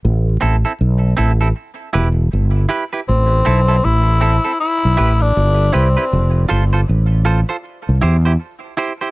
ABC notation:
X:1
M:4/4
L:1/16
Q:"Swing 16ths" 1/4=79
K:Am
V:1 name="Clean electric guitar"
z2 [CEA] [CEA] z2 [CEA] [CEA] z2 [EGB] z3 [EGB] [EGB] | z2 [CEA] [CEA] z2 [CEA] [CEA] z2 [EGB] z3 [EGB] [EGB] | z2 [FAc] [FAc] z2 [FAc] [FAc] z2 [EGc] [EGc] z2 [EGc] [EGc] |]
V:2 name="Tenor saxophone"
z16 | C4 E4 E3 D3 C2- | C2 z12 z2 |]
V:3 name="Fretless electric bass" clef=bass
A,,,2 A,,, z B,,,2 A,,,2 z2 E,,,2 G,,,2 z2 | A,,,2 B,,,2 A,,,3 z2 B,,, A,,,2 G,,,2 C,, z | F,,,2 G,,,2 A,,,3 z2 C,, E,,2 z4 |]